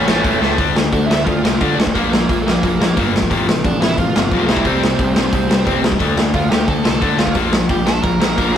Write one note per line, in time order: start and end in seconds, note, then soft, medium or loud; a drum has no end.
0.00 0.37 C#4 medium
0.00 0.37 C#5 medium
0.07 0.21 A1 medium
0.07 0.21 A2 medium
0.07 0.22 E3 medium
0.07 0.22 A3 medium
0.07 snare loud
0.22 0.38 E1 medium
0.22 0.41 A2 medium
0.22 0.40 E3 medium
0.22 0.39 A3 medium
0.22 kick loud
0.22 open hi-hat medium
0.41 0.58 C#2 medium
0.41 0.57 A2 medium
0.41 0.57 E3 medium
0.41 0.57 A3 medium
0.41 snare medium
0.57 0.72 D2 medium
0.57 0.73 D3 medium
0.57 0.74 A3 medium
0.57 0.74 D4 medium
0.57 kick loud
0.57 open hi-hat medium
0.74 0.88 D2 medium
0.74 0.90 D3 medium
0.74 0.91 A3 medium
0.74 snare loud
0.92 1.07 D2 medium
0.92 1.07 D3 medium
0.92 1.08 A3 medium
0.92 1.08 D4 medium
0.92 1.10 D5 medium
0.92 kick loud
0.92 open hi-hat medium
1.06 1.23 D2 medium
1.06 1.24 E4 medium
1.06 1.24 E5 loud
1.10 1.25 D3 medium
1.10 1.25 A3 medium
1.10 snare loud
1.24 1.41 D2 medium
1.24 1.41 D3 medium
1.24 1.41 A3 medium
1.24 1.73 F4 medium
1.24 1.76 F5 medium
1.24 kick loud
1.24 open hi-hat medium
1.43 1.57 C2 medium
1.43 1.58 D3 medium
1.43 1.59 A3 medium
1.43 snare loud
1.60 1.76 D3 medium
1.60 1.75 D3 medium
1.60 1.76 A3 medium
1.60 1.76 D4 medium
1.60 kick loud
1.60 open hi-hat medium
1.75 1.91 D2 medium
1.75 1.92 D3 medium
1.75 1.92 A3 medium
1.75 1.83 D4 medium
1.75 1.80 D5 medium
1.80 snare loud
1.87 kick medium
1.94 2.23 A#1 medium
1.94 2.10 A#2 medium
1.94 2.10 F3 medium
1.94 2.10 A#3 medium
1.94 2.43 A#3 medium
1.94 2.41 A#4 medium
1.94 kick loud
1.94 open hi-hat medium
2.13 2.27 A#2 medium
2.13 2.27 F3 medium
2.13 snare loud
2.29 2.57 A#1 medium
2.29 2.43 A#2 medium
2.29 2.44 F3 medium
2.29 kick loud
2.29 open hi-hat medium
2.42 3.09 A#3 medium
2.42 3.07 A#4 medium
2.47 2.61 A#2 medium
2.47 2.61 F3 medium
2.47 snare loud
2.63 2.77 A#1 medium
2.63 2.78 A#2 medium
2.63 2.78 F3 medium
2.63 kick loud
2.63 open hi-hat medium
2.79 2.93 A#1 medium
2.79 2.95 A#2 medium
2.79 2.95 F3 medium
2.79 snare loud
2.97 3.25 G1 medium
2.97 3.11 A#2 medium
2.97 3.12 F3 medium
2.97 3.12 A#3 medium
2.97 kick loud
2.97 open hi-hat medium
3.13 3.28 A#2 medium
3.13 3.28 F3 medium
3.13 snare loud
3.22 kick medium
3.30 3.44 A1 medium
3.30 3.46 F2 medium
3.30 3.46 C3 medium
3.30 3.46 F3 loud
3.30 kick loud
3.30 open hi-hat medium
3.47 3.61 A1 medium
3.47 3.62 F2 medium
3.47 3.62 C3 medium
3.47 snare loud
3.64 3.78 A1 medium
3.64 3.79 F2 medium
3.64 3.79 C3 medium
3.64 3.80 D4 medium
3.64 3.82 D5 medium
3.64 kick loud
3.64 open hi-hat medium
3.80 3.96 A1 medium
3.80 3.96 F2 medium
3.80 3.96 C3 medium
3.80 3.96 E4 medium
3.80 3.97 E5 loud
3.80 snare loud
3.98 4.12 A1 medium
3.98 4.13 F2 medium
3.98 4.13 C3 medium
3.98 4.45 F4 medium
3.98 4.51 F5 loud
3.98 kick loud
3.98 open hi-hat medium
4.15 4.29 G1 medium
4.15 4.30 F2 medium
4.15 4.30 C3 medium
4.15 snare loud
4.31 4.46 B1 medium
4.31 4.48 F2 medium
4.31 4.48 C3 medium
4.31 4.48 F3 medium
4.31 kick loud
4.31 open hi-hat medium
4.49 4.63 C2 medium
4.49 4.65 C3 medium
4.49 4.65 G3 medium
4.49 4.66 C4 medium
4.49 4.65 E4 medium
4.49 4.67 E5 medium
4.49 snare loud
4.57 kick medium
4.65 4.94 C2 medium
4.65 4.82 C3 medium
4.65 4.82 G3 medium
4.65 5.13 C4 medium
4.65 4.82 C4 medium
4.65 5.13 C5 medium
4.65 kick loud
4.65 open hi-hat medium
4.83 4.98 C3 medium
4.83 4.98 G3 medium
4.83 snare loud
4.99 5.27 C2 medium
4.99 5.14 C3 medium
4.99 5.14 G3 medium
4.99 kick loud
4.99 open hi-hat medium
5.15 5.32 C3 medium
5.15 5.32 G3 medium
5.15 5.80 C4 medium
5.15 5.79 C5 medium
5.15 snare loud
5.33 5.47 C2 medium
5.33 5.48 C3 medium
5.33 5.48 G3 medium
5.33 kick loud
5.33 open hi-hat medium
5.49 5.64 C2 medium
5.49 5.64 C3 medium
5.49 5.65 G3 medium
5.49 snare loud
5.65 5.95 C2 medium
5.65 5.81 C3 medium
5.65 5.81 G3 medium
5.65 5.83 C4 medium
5.65 kick loud
5.65 open hi-hat medium
5.82 5.98 C3 medium
5.82 5.98 G3 medium
5.82 snare loud
5.92 kick medium
5.99 6.15 D2 medium
5.99 6.16 D3 medium
5.99 6.16 A3 loud
5.99 6.17 D4 medium
5.99 kick loud
5.99 open hi-hat medium
6.17 6.31 D2 medium
6.17 6.33 D3 medium
6.17 6.33 A3 medium
6.17 snare loud
6.34 6.49 D2 medium
6.34 6.50 D3 medium
6.34 6.50 A3 medium
6.34 6.50 F4 medium
6.34 6.50 F5 medium
6.34 kick loud
6.34 open hi-hat medium
6.49 6.65 D2 medium
6.49 6.67 D3 medium
6.49 6.67 A3 medium
6.49 6.67 G4 medium
6.49 6.68 G5 medium
6.49 snare loud
6.68 6.82 D2 medium
6.68 6.83 D3 medium
6.68 6.83 A3 medium
6.68 7.16 A4 medium
6.68 7.21 A5 medium
6.68 kick loud
6.68 open hi-hat medium
6.84 7.00 C2 medium
6.84 7.00 D3 medium
6.84 7.00 A3 medium
6.84 snare loud
7.01 7.18 D3 medium
7.01 7.16 D3 medium
7.01 7.18 A3 medium
7.01 7.19 D4 medium
7.01 kick loud
7.01 open hi-hat medium
7.18 7.33 D2 medium
7.18 7.35 D3 medium
7.18 7.35 A3 medium
7.18 7.35 F4 soft
7.18 7.35 F5 medium
7.18 snare loud
7.27 kick medium
7.35 7.64 A#1 medium
7.35 7.52 A#2 medium
7.35 7.52 F3 medium
7.35 7.52 A#3 medium
7.35 kick loud
7.35 open hi-hat medium
7.53 7.69 A#2 medium
7.53 7.69 F3 medium
7.53 snare loud
7.69 7.98 A#1 medium
7.69 7.85 A#2 medium
7.69 7.85 F3 medium
7.69 7.86 G4 medium
7.69 7.88 G5 medium
7.69 kick loud
7.69 open hi-hat medium
7.86 8.02 A#2 medium
7.86 8.01 F3 medium
7.86 8.02 A4 medium
7.86 8.03 A5 loud
7.86 snare loud
8.02 8.18 A#1 medium
8.02 8.19 A#2 medium
8.02 8.19 F3 medium
8.02 8.51 A#4 medium
8.02 8.56 A#5 medium
8.02 kick loud
8.02 open hi-hat medium
8.20 8.36 A#1 medium
8.20 8.36 A#2 medium
8.20 8.36 F3 medium
8.20 snare loud
8.37 8.58 A#1 medium
8.37 8.54 A#2 medium
8.37 8.54 F3 medium
8.37 8.54 A#3 medium
8.37 kick loud
8.37 open hi-hat medium